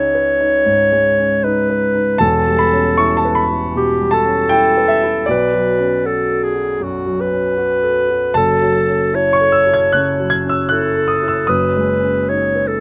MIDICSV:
0, 0, Header, 1, 3, 480
1, 0, Start_track
1, 0, Tempo, 772201
1, 1366, Time_signature, 4, 2, 24, 8
1, 6641, Tempo, 786370
1, 7934, End_track
2, 0, Start_track
2, 0, Title_t, "Clarinet"
2, 0, Program_c, 0, 71
2, 0, Note_on_c, 0, 73, 90
2, 893, Note_on_c, 0, 71, 90
2, 903, Note_off_c, 0, 73, 0
2, 1366, Note_off_c, 0, 71, 0
2, 1370, Note_on_c, 0, 69, 91
2, 2151, Note_off_c, 0, 69, 0
2, 2340, Note_on_c, 0, 67, 80
2, 2568, Note_on_c, 0, 69, 85
2, 2578, Note_off_c, 0, 67, 0
2, 3288, Note_off_c, 0, 69, 0
2, 3298, Note_on_c, 0, 71, 85
2, 3769, Note_on_c, 0, 69, 77
2, 3778, Note_off_c, 0, 71, 0
2, 3999, Note_on_c, 0, 68, 74
2, 4009, Note_off_c, 0, 69, 0
2, 4243, Note_on_c, 0, 66, 74
2, 4252, Note_off_c, 0, 68, 0
2, 4481, Note_on_c, 0, 71, 91
2, 4490, Note_off_c, 0, 66, 0
2, 5198, Note_off_c, 0, 71, 0
2, 5202, Note_on_c, 0, 69, 89
2, 5688, Note_on_c, 0, 73, 92
2, 5697, Note_off_c, 0, 69, 0
2, 6478, Note_off_c, 0, 73, 0
2, 6652, Note_on_c, 0, 69, 73
2, 7134, Note_on_c, 0, 71, 83
2, 7144, Note_off_c, 0, 69, 0
2, 7622, Note_on_c, 0, 73, 72
2, 7631, Note_off_c, 0, 71, 0
2, 7858, Note_on_c, 0, 69, 72
2, 7867, Note_off_c, 0, 73, 0
2, 7934, Note_off_c, 0, 69, 0
2, 7934, End_track
3, 0, Start_track
3, 0, Title_t, "Grand piano"
3, 0, Program_c, 1, 0
3, 0, Control_c, 1, 64, 127
3, 0, Note_on_c, 1, 37, 64
3, 0, Note_on_c, 1, 56, 58
3, 0, Note_on_c, 1, 61, 55
3, 0, Note_on_c, 1, 63, 60
3, 0, Note_on_c, 1, 76, 89
3, 90, Note_on_c, 1, 71, 59
3, 180, Note_off_c, 1, 63, 0
3, 252, Note_on_c, 1, 63, 54
3, 343, Note_off_c, 1, 71, 0
3, 383, Note_off_c, 1, 37, 0
3, 407, Note_on_c, 1, 44, 56
3, 505, Note_off_c, 1, 63, 0
3, 572, Note_off_c, 1, 56, 0
3, 572, Note_on_c, 1, 56, 53
3, 663, Note_off_c, 1, 44, 0
3, 736, Note_off_c, 1, 61, 0
3, 736, Note_on_c, 1, 61, 54
3, 824, Note_off_c, 1, 56, 0
3, 897, Note_on_c, 1, 63, 65
3, 985, Note_off_c, 1, 61, 0
3, 1054, Note_on_c, 1, 71, 60
3, 1124, Note_off_c, 1, 76, 0
3, 1146, Note_off_c, 1, 63, 0
3, 1211, Note_on_c, 1, 63, 51
3, 1306, Note_off_c, 1, 71, 0
3, 1357, Note_on_c, 1, 81, 111
3, 1364, Note_on_c, 1, 28, 68
3, 1369, Note_off_c, 1, 63, 0
3, 1369, Note_on_c, 1, 40, 66
3, 1378, Control_c, 1, 64, 0
3, 1480, Control_c, 1, 64, 127
3, 1537, Note_on_c, 1, 55, 56
3, 1605, Note_off_c, 1, 81, 0
3, 1608, Note_on_c, 1, 83, 95
3, 1698, Note_on_c, 1, 61, 58
3, 1792, Note_off_c, 1, 55, 0
3, 1849, Note_on_c, 1, 85, 105
3, 1851, Note_off_c, 1, 83, 0
3, 1860, Note_on_c, 1, 64, 58
3, 1952, Note_off_c, 1, 61, 0
3, 1970, Note_on_c, 1, 81, 98
3, 1971, Note_off_c, 1, 85, 0
3, 2020, Note_on_c, 1, 71, 60
3, 2083, Note_on_c, 1, 83, 98
3, 2091, Note_off_c, 1, 81, 0
3, 2113, Note_off_c, 1, 64, 0
3, 2177, Note_on_c, 1, 64, 51
3, 2271, Note_off_c, 1, 71, 0
3, 2305, Note_off_c, 1, 28, 0
3, 2308, Note_off_c, 1, 40, 0
3, 2331, Note_on_c, 1, 47, 57
3, 2428, Note_off_c, 1, 64, 0
3, 2493, Note_on_c, 1, 55, 55
3, 2554, Note_on_c, 1, 81, 104
3, 2562, Note_off_c, 1, 83, 0
3, 2583, Note_off_c, 1, 47, 0
3, 2648, Note_on_c, 1, 61, 56
3, 2745, Note_off_c, 1, 55, 0
3, 2793, Note_on_c, 1, 79, 113
3, 2800, Note_off_c, 1, 81, 0
3, 2803, Note_on_c, 1, 64, 63
3, 2904, Note_off_c, 1, 61, 0
3, 2967, Note_on_c, 1, 71, 57
3, 3035, Note_on_c, 1, 76, 90
3, 3041, Note_off_c, 1, 79, 0
3, 3062, Note_off_c, 1, 64, 0
3, 3129, Note_on_c, 1, 64, 57
3, 3223, Note_off_c, 1, 71, 0
3, 3270, Note_on_c, 1, 74, 96
3, 3281, Note_off_c, 1, 76, 0
3, 3283, Note_on_c, 1, 35, 72
3, 3288, Note_off_c, 1, 64, 0
3, 3297, Control_c, 1, 64, 0
3, 3390, Control_c, 1, 64, 127
3, 3441, Note_on_c, 1, 54, 57
3, 3599, Note_on_c, 1, 61, 57
3, 3697, Note_off_c, 1, 54, 0
3, 3759, Note_on_c, 1, 66, 60
3, 3855, Note_off_c, 1, 61, 0
3, 3916, Note_on_c, 1, 69, 57
3, 4015, Note_off_c, 1, 66, 0
3, 4068, Note_on_c, 1, 66, 52
3, 4173, Note_off_c, 1, 69, 0
3, 4213, Note_off_c, 1, 35, 0
3, 4228, Note_on_c, 1, 42, 57
3, 4330, Note_off_c, 1, 66, 0
3, 4390, Note_on_c, 1, 54, 57
3, 4491, Note_off_c, 1, 42, 0
3, 4553, Note_on_c, 1, 61, 53
3, 4653, Note_off_c, 1, 54, 0
3, 4708, Note_on_c, 1, 66, 60
3, 4814, Note_off_c, 1, 61, 0
3, 4870, Note_on_c, 1, 69, 57
3, 4953, Note_off_c, 1, 74, 0
3, 4971, Note_off_c, 1, 66, 0
3, 5037, Note_on_c, 1, 66, 54
3, 5131, Note_off_c, 1, 69, 0
3, 5185, Note_on_c, 1, 81, 107
3, 5189, Note_on_c, 1, 30, 62
3, 5197, Note_on_c, 1, 42, 67
3, 5199, Note_off_c, 1, 66, 0
3, 5211, Control_c, 1, 64, 0
3, 5309, Control_c, 1, 64, 127
3, 5358, Note_on_c, 1, 54, 59
3, 5522, Note_on_c, 1, 61, 54
3, 5616, Note_off_c, 1, 54, 0
3, 5677, Note_on_c, 1, 64, 57
3, 5780, Note_off_c, 1, 61, 0
3, 5795, Note_off_c, 1, 81, 0
3, 5799, Note_on_c, 1, 85, 91
3, 5849, Note_on_c, 1, 69, 52
3, 5919, Note_on_c, 1, 88, 85
3, 5922, Note_off_c, 1, 85, 0
3, 5938, Note_off_c, 1, 64, 0
3, 6011, Note_on_c, 1, 64, 48
3, 6043, Note_off_c, 1, 88, 0
3, 6052, Note_on_c, 1, 92, 88
3, 6104, Note_off_c, 1, 69, 0
3, 6134, Note_off_c, 1, 30, 0
3, 6138, Note_off_c, 1, 42, 0
3, 6168, Note_off_c, 1, 92, 0
3, 6170, Note_on_c, 1, 90, 101
3, 6181, Note_on_c, 1, 49, 56
3, 6263, Note_off_c, 1, 64, 0
3, 6337, Note_on_c, 1, 54, 52
3, 6402, Note_on_c, 1, 92, 99
3, 6406, Note_off_c, 1, 90, 0
3, 6427, Note_off_c, 1, 49, 0
3, 6496, Note_on_c, 1, 61, 51
3, 6522, Note_off_c, 1, 92, 0
3, 6523, Note_on_c, 1, 88, 87
3, 6585, Note_off_c, 1, 54, 0
3, 6643, Note_off_c, 1, 88, 0
3, 6644, Note_on_c, 1, 90, 103
3, 6657, Note_on_c, 1, 64, 56
3, 6745, Note_off_c, 1, 61, 0
3, 6817, Note_on_c, 1, 69, 53
3, 6881, Note_on_c, 1, 87, 88
3, 6882, Note_off_c, 1, 90, 0
3, 6905, Note_off_c, 1, 64, 0
3, 6970, Note_on_c, 1, 64, 49
3, 7002, Note_off_c, 1, 87, 0
3, 7005, Note_on_c, 1, 88, 85
3, 7066, Note_off_c, 1, 69, 0
3, 7121, Note_on_c, 1, 87, 96
3, 7125, Note_off_c, 1, 88, 0
3, 7128, Note_off_c, 1, 64, 0
3, 7129, Note_on_c, 1, 30, 61
3, 7132, Note_on_c, 1, 42, 61
3, 7133, Control_c, 1, 64, 0
3, 7229, Control_c, 1, 64, 127
3, 7299, Note_on_c, 1, 56, 52
3, 7460, Note_on_c, 1, 61, 48
3, 7550, Note_off_c, 1, 56, 0
3, 7625, Note_on_c, 1, 63, 51
3, 7709, Note_off_c, 1, 61, 0
3, 7783, Note_on_c, 1, 71, 49
3, 7869, Note_off_c, 1, 63, 0
3, 7934, Note_off_c, 1, 30, 0
3, 7934, Note_off_c, 1, 42, 0
3, 7934, Note_off_c, 1, 71, 0
3, 7934, Note_off_c, 1, 87, 0
3, 7934, End_track
0, 0, End_of_file